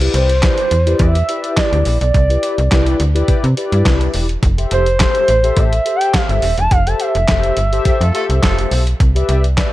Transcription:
0.00 E4 G4 B4 D5, closed hi-hat
0.14 C2 C5, closed hi-hat
0.29 closed hi-hat
0.42 E4 G4 B4 D5, kick, snare, clap, closed hi-hat
0.58 closed hi-hat
0.71 E2, closed hi-hat
0.86 E4 G4 B4 D5, closed hi-hat
0.99 E2 E5, kick, closed hi-hat
1.15 closed hi-hat
1.28 E4 G4 B4 D5, closed hi-hat
1.44 closed hi-hat
1.57 D5, kick, snare, clap, closed hi-hat
1.73 D2, closed hi-hat
1.85 A#1, open hi-hat
2.01 B1 D5, closed hi-hat
2.14 C2, kick, closed hi-hat
2.29 E4 G4 B4 D5, closed hi-hat
2.43 closed hi-hat
2.58 C2, closed hi-hat
2.71 C2 E4 G4 B4 D5, kick, snare, clap, closed hi-hat
2.86 closed hi-hat
3.00 D2, closed hi-hat
3.14 E4 G4 B4 D5, closed hi-hat
3.28 C3, kick, closed hi-hat
3.44 C3, closed hi-hat
3.57 E4 G4 B4 D5, closed hi-hat
3.72 G2, closed hi-hat
3.85 C2, kick, snare, clap, closed hi-hat
4.01 closed hi-hat
4.14 E1, open hi-hat
4.29 closed hi-hat
4.43 F1, kick, closed hi-hat
4.57 G4 A4 C5 E5, closed hi-hat
4.71 F1 C5, closed hi-hat
4.86 closed hi-hat
5.00 G4 A4 C5 E5, kick, snare, clap, closed hi-hat
5.15 closed hi-hat
5.28 A1, closed hi-hat
5.43 G4 A4 C5 E5, closed hi-hat
5.57 A1 E5, kick, closed hi-hat
5.73 closed hi-hat
5.85 G4 A4 C5 E5, closed hi-hat
5.96 G5
6.01 closed hi-hat
6.14 F5, kick, snare, clap, closed hi-hat
6.29 G1 E5, closed hi-hat
6.42 D#1, open hi-hat
6.58 E1 A5, closed hi-hat
6.71 F1 F5, kick, closed hi-hat
6.87 G4 A4 C5 E5 A5, closed hi-hat
7.00 E5, closed hi-hat
7.15 F1, closed hi-hat
7.28 F1 G4 A4 C5 E5, kick, snare, clap, closed hi-hat
7.43 closed hi-hat
7.57 G1, closed hi-hat
7.72 G4 A4 C5 E5, closed hi-hat
7.85 F2, kick, closed hi-hat
8.01 F2 A3 F4 A4, closed hi-hat
8.14 A3 F4 G4 A4 C5 E5, closed hi-hat
8.30 C2, closed hi-hat
8.43 F1 A3 F4 A4, kick, snare, clap, closed hi-hat
8.59 closed hi-hat
8.71 B1, open hi-hat
8.87 closed hi-hat
9.00 C2, kick, closed hi-hat
9.15 G4 B4 D5 E5, closed hi-hat
9.29 C2, closed hi-hat
9.44 closed hi-hat
9.57 G4 B4 D5 E5, kick, snare, clap, closed hi-hat

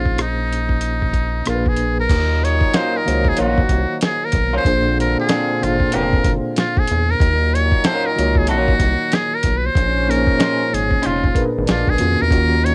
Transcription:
Already playing: A#1 A#2 A#3 C#4 D#4 F4 G#4 C5
0.05 kick
0.18 D#4, cross-stick, closed hi-hat
0.53 closed hi-hat
0.69 kick
0.81 closed hi-hat
1.02 kick
1.13 kick, closed hi-hat
1.46 A#1 A#2 A#3 D4 F4 G#4 A#4, cross-stick, closed hi-hat
1.55 B4
1.66 G#4, kick
1.77 closed hi-hat
2.00 A#4
2.09 D#2 A#2 F#3 D#4, kick, closed hi-hat, crash
2.44 C#5, closed hi-hat
2.61 kick
2.74 F#3 A#3 C#4 F4 C5, snare, closed hi-hat
2.97 A#4
3.05 C#2 D#3 A#3 F#4 C5 F5, closed hi-hat
3.14 C#5
3.25 G#4, kick
3.37 A#1 F#3 A#3 C#4 F4 F#4, closed hi-hat
3.58 kick
3.69 C2, kick, closed hi-hat
4.01 G#4, snare, closed hi-hat
4.25 A#4
4.32 B1, kick, closed hi-hat
4.53 F#3 A#3 C#4 F4 C5
4.65 A#1 A#2 D3 A#3 C4 D4 F4 G#4 C5, kick, closed hi-hat
5.00 A#4, closed hi-hat
5.20 G#4
5.29 F3 C4 D4 G#4, snare, closed hi-hat
5.61 G#1 A#2 A#3 D4 F4 G#4 C5, closed hi-hat
5.80 kick
5.92 F1 F3 C4 D4 G#4 A#4, closed hi-hat
6.13 kick
6.24 F#1, kick, closed hi-hat
6.56 F4, snare, closed hi-hat
6.77 G#4, kick
6.87 E2, closed hi-hat
7.11 A#4
7.20 D#2 A#2 F#3 D#4, kick, closed hi-hat
7.54 C#5, closed hi-hat
7.72 kick
7.84 F#3 C#4 F4 A#4 C5, snare, closed hi-hat
8.06 A#4
8.16 C#2 D#3 A#3 F4 F#4 C#5, closed hi-hat
8.35 G#4, kick
8.47 A#1 F#3 C#4 F4 F#4 A#4, closed hi-hat
8.68 kick
8.80 C2, kick, closed hi-hat
9.12 G#4, snare, closed hi-hat
9.34 A#4
9.43 B1, kick, closed hi-hat
9.57 B4
9.66 C5
9.75 A#1 G#2 F3 C#4, kick, closed hi-hat
10.07 A#2 A#3 C#4 D#4 G#4 A#4 C5, closed hi-hat
10.27 kick
10.39 C#4 D#4 G#4 C5, snare, closed hi-hat
10.74 G#1 G#4, closed hi-hat
10.91 kick
11.02 F1 C#4 D#4 F4 G#4 C5, closed hi-hat
11.24 kick
11.35 G#1 A#2 D4 G#4 A#4 B4, kick, closed hi-hat
11.58 G#1
11.67 A#1 B2 G#3 D4 F4, snare, closed hi-hat
11.87 B1 G#4, kick
11.98 F2 D#3 A#3 C#4 F4 F#4, closed hi-hat
12.21 E2 A#4
12.30 D#2 A#2 D#3 F#3 A#3 C#4 D#4 F4 F#4, kick, closed hi-hat
12.65 C#5, closed hi-hat

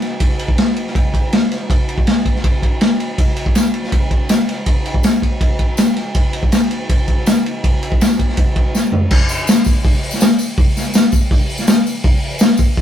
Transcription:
0.02 snare, ride
0.20 kick, ride
0.39 ride
0.48 kick
0.58 snare, ride
0.76 ride
0.87 snare
0.95 kick, ride
1.14 kick, ride
1.33 snare, ride
1.52 snare, ride
1.70 kick, ride
1.89 ride
1.98 kick
2.07 snare, ride
2.25 kick, ride
2.36 snare
2.44 kick, ride
2.63 kick, ride
2.81 snare, ride
3.00 ride
3.18 kick, ride
3.36 ride
3.46 kick
3.55 snare, ride, tambourine
3.74 ride
3.84 snare
3.92 kick, ride
4.11 kick, ride
4.29 snare, ride, tambourine
4.49 snare, ride
4.66 kick, ride
4.86 ride
4.94 kick
5.03 snare, ride, tambourine
5.22 kick, ride
5.41 kick, ride
5.59 kick, ride
5.77 snare, ride, tambourine
5.96 snare, ride
6.15 kick, ride
6.33 ride
6.43 kick
6.52 snare, ride, tambourine
6.71 ride
6.89 kick, ride
7.08 kick, ride
7.26 snare, ride, tambourine
7.46 ride
7.64 kick, ride
7.83 ride
7.92 kick
8.01 snare, ride, tambourine
8.19 kick, ride
8.29 snare
8.37 kick, ride
8.56 kick, ride
8.75 snare, tambourine
8.92 floor tom
9.11 kick, crash
9.29 open hi-hat, tambourine
9.39 tambourine
9.47 snare, open hi-hat, tambourine
9.57 tambourine
9.64 kick, open hi-hat, tambourine
9.85 kick, open hi-hat
9.93 tambourine
10.03 open hi-hat
10.11 snare, tambourine
10.20 snare, open hi-hat, tambourine
10.39 open hi-hat, tambourine
10.48 tambourine
10.58 kick, open hi-hat
10.76 snare, open hi-hat, tambourine
10.85 tambourine
10.94 snare, open hi-hat, tambourine
11.12 kick, open hi-hat, tambourine
11.31 kick, open hi-hat
11.40 tambourine
11.49 open hi-hat
11.58 snare, tambourine
11.67 snare, open hi-hat, tambourine
11.86 open hi-hat, tambourine
11.95 tambourine
12.04 kick, open hi-hat
12.23 open hi-hat
12.31 tambourine
12.39 snare, open hi-hat, tambourine
12.48 tambourine
12.57 kick, open hi-hat, tambourine
12.77 kick, open hi-hat

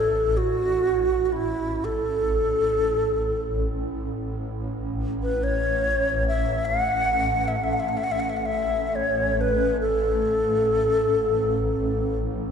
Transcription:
Already playing: A1 A4
0.37 F#4
1.25 F#4
1.32 E4
1.85 A4
2.25 A1
5.23 B4
5.44 C#5
6.28 E5
6.65 F#5
7.48 E5
7.56 F#5
7.64 E5
7.73 F#5
7.80 E5
7.89 F#5
7.97 E5
8.04 F#5
8.12 E5
8.20 F#5
8.29 E5
8.37 F#5
8.46 E5
8.95 C#5
9.41 B4
9.80 A4

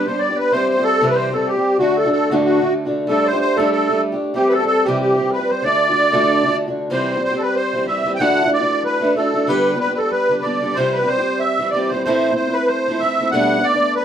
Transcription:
0.06 G3 B3 D4 G4 C5
0.19 D5
0.29 B3 D4 G4
0.36 B4
0.52 E3 G3 C4 G4 C5
0.69 C5
0.77 G3 C4 G4
0.83 A4
1.01 C3 E3 G3 C4 G4
1.07 B4
1.14 C5
1.32 E3 G3 C4 A4
1.47 G4
1.55 G3 C4 G4
1.79 D3 A3 D4 F#4
1.97 A4
2.04 D3 A3 D4 F#4
2.10 A4
2.30 D2 A2 D3 A3 D4 F#4
2.43 F#4
2.61 D3 A3 D4 F#4
2.85 D3 A3 D4 F#4
3.07 G3 A3 D4 G4 A4
3.21 D5
3.26 C5
3.33 A3 D4 G4
3.39 C5
3.57 G3 A3 D4 G4 A4
3.71 A4
3.89 G3 A3 D4 G4
4.12 A3 D4 G4
4.34 E3 G3 C4 G4
4.48 A4 B4
4.53 A4
4.60 G3 C4 G4
4.66 A4
4.85 C3 E3 G3 C4 G4
4.99 G4
5.16 E3 G3 C4 G4
5.31 B4
5.39 G3 C4 G4
5.50 C5
5.62 D3 A3 D4 F#4 D5
5.89 D3 A3 D4 F#4
6.12 D2 A2 D3 A3 D4 F#4
6.45 D3 A3 D4 F#4
6.66 D3 A3 D4 F#4
6.90 C3 E3 G3 C4 G4 C5
7.16 G3 C4 G4
7.24 C5
7.31 G3 C4 G4
7.38 A4
7.42 B4
7.56 C5
7.74 E3 G3 C4 G4
7.86 E3 G3 C4 G4 E5
8.05 E3 G3 C4 G4
8.15 G5
8.19 D2 A2 E3 A3 D4 F#4 F#5
8.43 E3 A3 D4 F#4
8.53 D5
8.59 E3 A3 D4 F#4
8.85 B4
9.01 E3 A3 D4 F#4
9.16 E3 A3 D4 F#4 A4
9.33 E3 A3 D4 F#4
9.47 D3 G3 B3 G4 B4
9.73 G3 B3 G4
9.80 B4
9.89 G3 B3 G4
9.94 A4 B4
10.11 B4
10.29 D3 G3 B3 G4
10.42 D3 G3 B3 D5
10.46 G4
10.61 D3 G3 B3 G4
10.75 C3 E3 G3 C4 C5
10.79 G4
10.93 B4
11.02 G3 C4 G4
11.07 C5
11.18 G3 C4 G4
11.40 E5
11.59 E3 G3 C4 G4
11.71 E3 G3 D5
11.76 C4 G4
11.89 E3 G3 C5
11.93 C4 G4
12.04 A2 E3 A3 C4 C5
12.08 E4
12.31 A3 C4 E4
12.36 C5
12.47 A3 C4 E4
12.53 B4
12.67 C5
12.88 E3 A3 C4 E4
13.00 E3 C4 E5
13.04 A3 E4
13.19 E3 A3 C4 E4
13.31 B2 G3 A3 B3 D4 F#5
13.59 A3 B3 D4
13.64 D5
13.74 A3 B3 D4
13.95 B4

